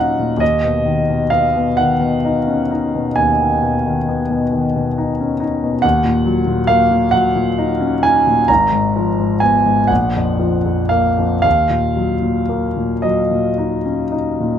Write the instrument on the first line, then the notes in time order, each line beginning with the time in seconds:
grand piano
Already playing: D#2 A#2 F#3 A#3 C#4 D#4 D#5 F5 F#5
0.19 A#2
0.37 D#2 D#5
0.64 B2
0.85 D#3
1.10 B2
1.30 B3 F5
1.56 B2
1.77 D#3 F#5
2.01 B2
2.25 D#4
2.47 C#4
2.71 D#4
2.95 B2
3.16 D#2 G#5
3.41 D#3
3.63 B2
3.86 D#3
4.09 B3
4.31 B2
4.53 D#3
4.76 B2
4.98 D#4
5.20 C#4
5.40 D#4
5.64 B2
5.82 D#2 F#5
6.04 A#2
6.25 F#3
6.47 A#2
6.67 A#3 F5
6.91 A#2
7.11 F#3 F#5
7.36 A#2
7.58 D#4
7.81 C#4
8.03 D#4 G#5
8.27 A#2
8.48 G#1 A#5
8.72 G#2
8.96 F3
9.19 G#2
9.40 B3 G#5
9.66 G#2
9.87 A#1 F#5
10.16 F2
10.39 F3
10.66 F2
10.89 A#3 F5
11.19 F2
11.42 D#2 F5
11.70 A#2
11.97 F#3
12.22 A#2
12.49 A#3
12.77 A#2
13.02 F#3 D#5
13.31 A#2
13.58 D#4
13.85 C#4
14.12 D#4
14.40 A#2